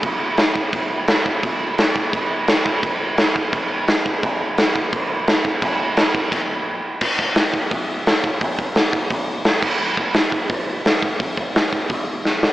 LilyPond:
\new DrumStaff \with { instrumentName = "Drums" } \drummode { \time 4/4 \tempo 4 = 172 <cymc bd>4 <cymc sn>8 bd8 <cymc bd>4 <cymc sn>8 bd8 | <cymc bd>4 <cymc sn>8 bd8 <cymc bd>4 <cymc sn>8 bd8 | <cymc bd>4 <cymc sn>8 bd8 <cymc bd>4 <cymc sn>8 bd8 | <cymc bd>4 <cymc sn>8 bd8 <cymc bd>4 <cymc sn>8 bd8 |
<cymc bd>4 <cymc sn>8 bd8 <cymc bd>4 r4 | <cymc bd>8 bd8 <hho sn>8 bd8 <hho bd>4 <hho sn>8 bd8 | <hho bd>8 bd8 <hho sn>8 bd8 <hho bd>4 <hho sn>8 <cymc bd>8 | r8 bd8 <hho sn>8 bd8 <hho bd>4 <hho sn>8 bd8 |
<hho bd>8 bd8 <hho sn>8 bd8 <hho bd>4 sn8 sn8 | }